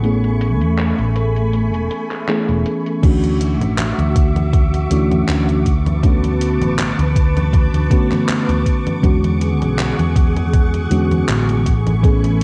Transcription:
0.00 0.61 A1 medium
0.00 1.86 E3 medium
0.00 3.00 A3 medium
0.00 1.86 A3 medium
0.00 1.87 B3 medium
0.00 3.00 G#5 medium
0.00 3.00 B5 medium
0.00 3.00 C#6 medium
0.00 closed hi-hat medium
0.04 1.87 C#4 medium
0.04 1.88 G#4 medium
0.24 closed hi-hat soft
0.41 closed hi-hat medium
0.61 0.92 E2 medium
0.61 closed hi-hat soft
0.79 clap loud
0.79 closed hi-hat medium
0.99 1.74 A1 medium
0.99 closed hi-hat soft
1.16 closed hi-hat medium
1.36 closed hi-hat soft
1.53 closed hi-hat medium
1.74 1.88 E1 medium
1.74 closed hi-hat soft
1.91 closed hi-hat medium
2.11 clap soft
2.11 closed hi-hat soft
2.28 2.99 E3 medium
2.28 2.99 A3 medium
2.28 2.99 B3 medium
2.28 3.00 C#4 medium
2.28 3.00 G#4 medium
2.28 clap loud
2.28 closed hi-hat medium
2.49 2.63 E1 medium
2.49 closed hi-hat soft
2.66 closed hi-hat medium
2.86 closed hi-hat soft
3.02 3.61 D2 loud
3.02 4.86 E3 medium
3.02 4.86 A3 medium
3.02 4.87 C#4 medium
3.02 4.87 D4 medium
3.02 5.63 F#4 medium
3.02 4.88 F#4 medium
3.02 5.63 E5 medium
3.02 12.44 C#6 medium
3.02 11.61 D6 medium
3.02 kick loud
3.02 closed hi-hat medium
3.02 crash loud
3.02 high conga soft
3.24 closed hi-hat soft
3.24 high conga soft
3.41 closed hi-hat medium
3.61 3.91 A1 medium
3.61 closed hi-hat soft
3.61 high conga medium
3.78 clap loud
3.78 closed hi-hat medium
3.78 high conga soft
3.98 4.86 D2 loud
3.98 closed hi-hat soft
3.98 high conga soft
4.16 kick loud
4.16 closed hi-hat loud
4.36 closed hi-hat soft
4.36 high conga medium
4.53 kick loud
4.53 closed hi-hat medium
4.53 high conga soft
4.74 closed hi-hat soft
4.74 high conga soft
4.90 5.22 D2 medium
4.90 5.64 E3 medium
4.90 5.64 A3 medium
4.90 5.64 C#4 medium
4.90 5.64 D4 medium
4.90 5.64 F#4 medium
4.90 closed hi-hat loud
5.11 closed hi-hat soft
5.11 high conga medium
5.28 6.61 D2 medium
5.28 clap loud
5.28 closed hi-hat medium
5.28 high conga soft
5.49 closed hi-hat soft
5.49 high conga soft
5.66 9.00 B4 medium
5.66 9.00 A5 medium
5.66 kick medium
5.66 closed hi-hat loud
5.86 closed hi-hat soft
5.86 high conga medium
6.02 7.86 D3 medium
6.02 7.86 A3 medium
6.02 7.87 B3 medium
6.02 7.87 C#4 medium
6.02 7.88 F#4 medium
6.02 kick loud
6.02 closed hi-hat medium
6.02 high conga soft
6.24 closed hi-hat soft
6.24 high conga soft
6.41 closed hi-hat loud
6.61 6.92 A1 medium
6.61 closed hi-hat soft
6.61 high conga medium
6.79 clap loud
6.79 closed hi-hat medium
6.79 high conga soft
6.99 7.68 D2 loud
6.99 closed hi-hat soft
6.99 high conga soft
7.16 kick loud
7.16 closed hi-hat loud
7.37 closed hi-hat soft
7.37 high conga medium
7.53 kick loud
7.53 closed hi-hat medium
7.53 high conga soft
7.74 7.88 D2 loud
7.74 closed hi-hat soft
7.74 high conga soft
7.89 8.99 D3 medium
7.89 8.99 A3 medium
7.89 8.99 B3 medium
7.89 9.00 C#4 medium
7.89 9.00 F#4 medium
7.89 kick loud
7.89 closed hi-hat loud
8.12 clap soft
8.12 closed hi-hat soft
8.12 high conga medium
8.29 clap loud
8.29 closed hi-hat medium
8.29 high conga soft
8.49 8.63 D2 medium
8.49 closed hi-hat soft
8.49 high conga soft
8.66 kick medium
8.66 closed hi-hat loud
8.87 closed hi-hat soft
8.87 high conga medium
9.02 9.61 E2 loud
9.02 10.86 D3 medium
9.02 10.86 G#3 medium
9.02 10.87 B3 medium
9.02 10.87 C#4 medium
9.02 10.87 F#4 medium
9.02 11.64 G#4 medium
9.02 11.64 F#5 medium
9.02 kick loud
9.02 closed hi-hat medium
9.02 high conga soft
9.24 closed hi-hat soft
9.24 high conga soft
9.41 closed hi-hat medium
9.61 9.92 B1 medium
9.61 closed hi-hat soft
9.61 high conga medium
9.79 clap loud
9.79 closed hi-hat medium
9.79 high conga soft
9.99 10.86 E2 loud
9.99 closed hi-hat soft
9.99 high conga soft
10.16 kick loud
10.16 closed hi-hat loud
10.37 closed hi-hat soft
10.37 high conga medium
10.53 kick loud
10.53 closed hi-hat medium
10.53 high conga soft
10.74 closed hi-hat soft
10.74 high conga soft
10.90 11.22 E2 medium
10.90 11.63 D3 medium
10.90 11.64 G#3 medium
10.90 11.64 B3 medium
10.90 11.64 C#4 medium
10.90 11.64 F#4 medium
10.90 closed hi-hat medium
11.11 closed hi-hat soft
11.11 high conga medium
11.28 12.44 A1 loud
11.28 clap loud
11.28 closed hi-hat medium
11.28 high conga soft
11.49 closed hi-hat soft
11.49 high conga soft
11.66 12.44 A3 medium
11.66 12.44 G#5 medium
11.66 12.44 B5 medium
11.66 kick medium
11.66 closed hi-hat loud
11.87 closed hi-hat soft
11.87 high conga medium
12.01 12.44 E3 medium
12.01 12.44 A3 medium
12.01 12.44 B3 medium
12.01 12.44 C#4 medium
12.01 12.44 G#4 medium
12.01 kick loud
12.01 closed hi-hat medium
12.01 high conga soft
12.24 closed hi-hat soft
12.24 high conga soft

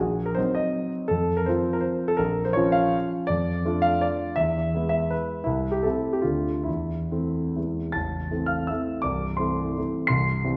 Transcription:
0.00 0.37 A#1 medium
0.00 0.26 G#4 medium
0.26 0.36 A#4 medium
0.35 1.06 F#3 soft
0.35 1.07 C4 soft
0.35 1.07 D#4 soft
0.35 0.55 C5 medium
0.55 0.92 D#5 medium
1.08 1.47 F2 medium
1.08 1.37 A4 medium
1.37 1.47 A#4 medium
1.46 2.17 F3 soft
1.46 2.16 C4 soft
1.46 2.17 F4 soft
1.46 1.75 C5 medium
1.73 1.83 A#4 medium
1.81 2.09 C5 medium
2.08 2.19 A4 medium
2.17 2.56 A#1 medium
2.17 2.46 A#4 medium
2.45 2.56 C5 medium
2.53 3.25 F3 soft
2.53 3.25 C#4 soft
2.53 3.25 F4 medium
2.53 2.74 C#5 medium
2.72 3.10 F5 medium
3.27 3.65 F2 medium
3.27 3.84 D5 medium
3.65 4.34 A3 medium
3.65 4.35 D4 soft
3.65 4.34 F4 medium
3.82 4.02 F5 medium
4.01 4.37 D5 medium
4.36 4.73 E2 medium
4.36 4.88 E5 medium
4.74 5.43 G#3 soft
4.74 5.43 B3 soft
4.74 5.42 E4 medium
4.89 5.10 E5 medium
5.10 5.46 B4 medium
5.44 5.83 C2 soft
5.44 5.73 E4 medium
5.72 5.83 G4 medium
5.83 6.22 A3 soft
5.83 6.22 C4 soft
5.83 6.22 E4 soft
5.83 6.14 A4 medium
6.13 6.24 G4 medium
6.22 6.65 D2 soft
6.22 6.62 A3 soft
6.22 6.63 D4 soft
6.22 6.65 F4 medium
6.64 7.11 E2 soft
6.64 7.55 E4 medium
7.11 7.52 E3 soft
7.11 7.52 A3 soft
7.11 7.52 C4 soft
7.56 7.95 E2 soft
7.56 7.92 E3 soft
7.56 7.92 G#3 soft
7.56 7.92 B3 soft
7.92 8.31 A0 soft
7.92 8.31 A1 soft
7.92 8.46 A5 soft
7.92 8.50 A6 medium
8.31 8.65 E3 soft
8.31 8.66 A3 soft
8.31 8.66 C4 soft
8.46 8.66 F5 soft
8.46 8.67 F6 medium
8.67 9.01 E3 soft
8.67 9.02 A3 soft
8.67 9.01 C4 soft
8.67 9.02 E5 soft
8.67 9.04 E6 medium
9.02 9.40 C1 soft
9.02 9.40 C2 soft
9.02 9.38 D5 soft
9.02 9.39 D6 medium
9.37 9.73 E3 soft
9.37 9.73 A3 soft
9.37 9.73 C4 soft
9.37 10.05 C5 soft
9.37 10.07 C6 medium
9.77 10.07 E3 soft
9.77 10.07 A3 soft
9.77 10.08 C4 soft
10.07 10.43 C1 soft
10.07 10.43 C2 soft
10.07 10.57 C6 medium
10.07 10.57 C7 medium
10.44 10.57 E3 soft
10.44 10.57 G3 soft
10.44 10.57 C4 soft

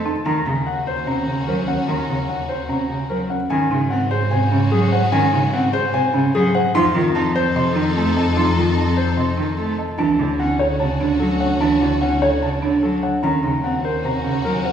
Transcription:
0.00 0.14 F2 medium
0.00 0.12 A4 medium
0.00 0.12 D#5 medium
0.06 0.25 D#4 medium
0.06 0.32 A5 medium
0.25 3.38 D#2 medium
0.25 0.41 D#3 medium
0.25 3.26 C#4 medium
0.25 0.52 D#4 medium
0.25 3.26 F#4 medium
0.25 0.52 A#5 medium
0.46 0.61 C#3 medium
0.67 0.93 F#5 medium
0.87 1.13 C5 medium
1.07 1.22 C3 medium
1.07 1.33 C#4 medium
1.07 1.33 A#5 medium
1.27 1.42 C#3 medium
1.47 1.63 F#3 medium
1.47 1.74 A#4 medium
1.47 1.74 C5 medium
1.68 1.94 C#4 medium
1.68 1.94 F#5 medium
1.88 2.03 D#3 medium
1.88 2.14 D#4 medium
1.88 2.14 A#5 medium
2.08 2.23 C#3 medium
2.29 2.55 F#5 medium
2.49 2.75 C5 medium
2.69 2.84 C3 medium
2.69 2.95 C#4 medium
2.69 2.96 A#5 medium
2.89 3.04 C#3 medium
3.10 3.25 F#3 medium
3.10 3.36 A#4 medium
3.10 3.36 C5 medium
3.30 3.49 C#4 medium
3.30 3.56 F#5 medium
3.50 6.62 G#2 medium
3.50 3.65 D#3 medium
3.50 3.77 C#4 medium
3.50 6.50 C#4 medium
3.50 6.50 F#4 medium
3.50 3.77 G#5 medium
3.71 3.86 C#3 medium
3.71 3.97 D#4 medium
3.90 4.06 C4 medium
3.90 4.17 F#5 medium
4.11 4.37 G#4 medium
4.11 4.37 C5 medium
4.31 4.46 C3 medium
4.31 4.58 C5 medium
4.31 4.58 G#5 medium
4.51 4.67 C#3 medium
4.51 4.78 C#4 loud
4.72 4.87 F#3 loud
4.72 4.98 G#4 medium
4.92 5.19 C5 medium
4.92 5.18 F#5 medium
5.12 5.27 D#3 medium
5.12 5.39 C#4 loud
5.12 5.39 G#5 loud
5.32 5.48 C#3 medium
5.32 5.59 D#4 medium
5.53 5.68 C4 medium
5.53 5.79 F#5 medium
5.73 6.00 G#4 medium
5.73 6.00 C5 loud
5.93 6.09 C3 medium
5.93 6.20 C5 medium
5.93 6.20 G#5 medium
6.14 6.29 C#3 medium
6.14 6.40 C#4 loud
6.34 6.49 F#3 loud
6.34 6.61 G#4 loud
6.54 6.81 C5 medium
6.54 6.81 F#5 medium
6.74 9.87 F2 medium
6.74 6.90 F3 loud
6.74 9.75 D#4 medium
6.74 7.01 D#4 loud
6.74 9.75 A4 loud
6.74 7.01 C6 loud
6.95 7.10 D#3 medium
6.95 7.21 F4 medium
7.15 7.30 D#4 medium
7.15 7.41 A5 medium
7.35 7.62 C5 medium
7.35 7.62 C5 loud
7.55 7.70 C3 medium
7.55 7.82 D#5 medium
7.55 7.82 C6 medium
7.75 7.91 D#3 medium
7.75 8.02 D#4 medium
7.96 8.11 A3 medium
7.96 8.22 A4 medium
8.16 8.43 D#5 medium
8.16 8.43 A5 medium
8.36 8.52 F3 medium
8.36 8.63 D#4 medium
8.36 8.63 C6 medium
8.56 8.72 D#3 medium
8.56 8.83 F4 medium
8.77 8.92 D#4 medium
8.77 9.04 A5 medium
8.97 9.24 C5 medium
9.17 9.33 C3 medium
9.17 9.44 D#5 medium
9.17 9.44 C6 medium
9.38 9.53 D#3 medium
9.38 9.64 D#4 medium
9.58 9.73 A3 medium
9.58 9.84 A4 medium
9.78 10.05 D#5 medium
9.78 9.97 A5 medium
9.98 13.11 D2 medium
9.98 10.14 E3 medium
9.98 12.99 C#4 medium
9.98 10.25 D4 medium
9.98 12.99 F#4 medium
9.98 10.25 A5 medium
10.19 10.34 D3 medium
10.19 10.45 E4 medium
10.39 10.54 C#4 medium
10.39 10.66 F#5 medium
10.59 10.86 A4 medium
10.59 10.86 C#5 medium
10.80 10.95 C#3 medium
10.80 11.06 C#5 medium
10.80 11.06 A5 medium
11.00 11.15 D3 medium
11.00 11.27 D4 medium
11.20 11.35 F#3 medium
11.20 11.46 A4 medium
11.40 11.67 C#5 medium
11.40 11.67 F#5 medium
11.60 11.76 E3 medium
11.60 11.87 D4 medium
11.60 11.87 A5 medium
11.81 11.96 D3 medium
11.81 12.08 E4 medium
12.01 12.17 C#4 medium
12.01 12.28 F#5 medium
12.22 12.48 A4 medium
12.22 12.48 C#5 medium
12.42 12.57 C#3 medium
12.42 12.68 C#5 medium
12.42 12.69 A5 medium
12.62 12.77 D3 medium
12.62 12.89 D4 medium
12.83 12.98 F#3 medium
12.83 13.09 A4 medium
13.03 13.29 C#5 medium
13.03 13.29 F#5 medium
13.23 14.72 D#2 medium
13.23 13.38 D#3 medium
13.23 13.49 C#4 medium
13.23 14.72 C#4 medium
13.23 14.72 F#4 medium
13.23 13.50 A#5 medium
13.43 13.59 C#3 medium
13.43 13.70 D#4 medium
13.64 13.79 C4 medium
13.64 13.90 F#5 medium
13.84 14.10 A#4 medium
13.84 14.10 C5 medium
14.04 14.19 C3 medium
14.04 14.31 C5 medium
14.04 14.31 A#5 medium
14.24 14.40 C#3 medium
14.24 14.51 C#4 medium
14.45 14.60 F#3 medium
14.45 14.71 A#4 medium
14.65 14.72 C5 medium
14.65 14.72 F#5 medium

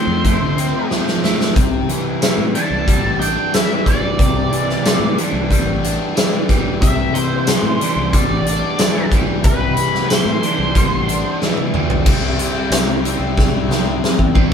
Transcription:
0.00 0.89 F3 medium
0.00 0.24 A3 medium
0.00 0.57 C4 medium
0.00 0.87 C5 medium
0.07 0.38 F2 medium
0.24 1.22 A3 medium
0.24 kick medium
0.24 closed hi-hat medium
0.40 0.71 D2 medium
0.57 2.54 C4 medium
0.57 closed hi-hat medium
0.90 1.56 F3 medium
0.90 snare medium
1.08 snare soft
1.24 1.56 A3 medium
1.24 snare medium
1.41 snare medium
1.56 1.87 C2 medium
1.56 3.24 C3 medium
1.56 kick medium
1.56 closed hi-hat medium
1.89 2.35 C3 medium
1.89 2.21 E3 medium
1.89 closed hi-hat medium
2.22 3.53 E3 medium
2.22 2.87 G3 medium
2.22 snare medium
2.22 closed hi-hat medium
2.22 tambourine loud
2.38 2.53 A2 medium
2.55 3.53 E3 medium
2.55 3.20 D4 medium
2.55 3.20 A5 medium
2.55 closed hi-hat medium
2.70 3.01 C2 medium
2.87 3.86 G3 medium
2.87 kick medium
2.87 closed hi-hat medium
3.04 3.34 A1 medium
3.20 4.88 D4 medium
3.20 3.54 G5 medium
3.20 closed hi-hat medium
3.53 4.52 E3 medium
3.53 3.86 E5 medium
3.53 snare loud
3.53 closed hi-hat medium
3.53 tambourine loud
3.86 5.50 G3 medium
3.86 5.14 D5 medium
3.86 kick medium
3.86 closed hi-hat medium
4.19 4.49 C2 medium
4.19 5.86 C3 medium
4.19 kick medium
4.19 closed hi-hat medium
4.50 4.97 C3 medium
4.50 4.84 E3 medium
4.50 closed hi-hat soft
4.70 snare soft
4.85 6.15 E3 medium
4.85 5.51 G3 medium
4.85 snare loud
4.85 closed hi-hat medium
4.85 tambourine medium
5.00 5.16 A2 medium
5.17 6.16 E3 medium
5.17 5.82 D4 medium
5.17 closed hi-hat medium
5.33 5.64 C2 medium
5.51 6.48 G3 medium
5.51 kick medium
5.51 closed hi-hat medium
5.66 5.97 A1 medium
5.83 7.50 D4 medium
5.83 closed hi-hat medium
6.15 7.14 E3 medium
6.15 snare loud
6.15 closed hi-hat medium
6.15 tambourine loud
6.48 8.12 G3 medium
6.48 kick medium
6.48 closed hi-hat medium
6.81 7.12 C2 medium
6.81 8.49 C3 medium
6.81 7.16 E5 loud
6.81 kick loud
6.81 closed hi-hat medium
7.13 7.60 C3 medium
7.13 7.47 E3 medium
7.13 8.09 C5 medium
7.13 closed hi-hat medium
7.47 8.77 E3 medium
7.47 8.13 G3 medium
7.47 snare loud
7.47 closed hi-hat medium
7.47 tambourine loud
7.63 7.79 A2 medium
7.80 8.79 E3 medium
7.80 8.46 D4 medium
7.80 closed hi-hat medium
7.96 8.27 C2 medium
8.13 9.10 G3 medium
8.13 9.09 D5 medium
8.13 kick medium
8.13 closed hi-hat medium
8.29 8.60 A1 medium
8.46 10.10 D4 medium
8.46 closed hi-hat medium
8.78 9.76 E3 medium
8.78 snare loud
8.78 closed hi-hat medium
8.78 tambourine loud
9.11 10.74 G3 medium
9.11 kick medium
9.11 closed hi-hat medium
9.43 9.75 C2 medium
9.43 11.08 C3 medium
9.43 10.09 B4 loud
9.43 kick loud
9.43 closed hi-hat medium
9.76 10.23 C3 medium
9.76 10.08 E3 medium
9.76 closed hi-hat medium
9.95 snare soft
10.09 11.40 E3 medium
10.09 10.74 G3 medium
10.09 11.37 C5 loud
10.09 snare medium
10.09 closed hi-hat medium
10.09 tambourine loud
10.25 10.41 A2 medium
10.42 11.40 E3 medium
10.42 11.07 D4 medium
10.42 closed hi-hat medium
10.59 10.89 C2 medium
10.75 11.73 G3 medium
10.75 kick medium
10.75 closed hi-hat medium
10.91 11.22 A1 medium
11.08 12.06 D4 medium
11.08 closed hi-hat medium
11.42 12.06 E3 medium
11.42 snare medium
11.57 high tom medium
11.74 12.07 G3 medium
11.74 mid tom medium
11.90 floor tom medium
12.06 12.37 C2 medium
12.06 13.03 C3 medium
12.06 13.03 G3 loud
12.06 13.04 C4 medium
12.06 kick medium
12.06 crash medium
12.10 13.03 E4 loud
12.39 closed hi-hat medium
12.70 13.17 C2 medium
12.70 snare loud
12.70 closed hi-hat medium
12.70 tambourine medium
13.04 14.53 C3 medium
13.04 14.53 G3 medium
13.04 14.53 C4 medium
13.04 14.53 E4 medium
13.04 closed hi-hat medium
13.19 13.66 C2 medium
13.38 kick medium
13.38 snare medium
13.69 14.00 C2 medium
13.69 snare medium
14.04 snare medium
14.19 14.53 E2 medium
14.19 kick medium
14.35 14.53 C3 medium
14.35 14.53 G3 medium
14.35 14.53 C4 medium
14.35 kick medium

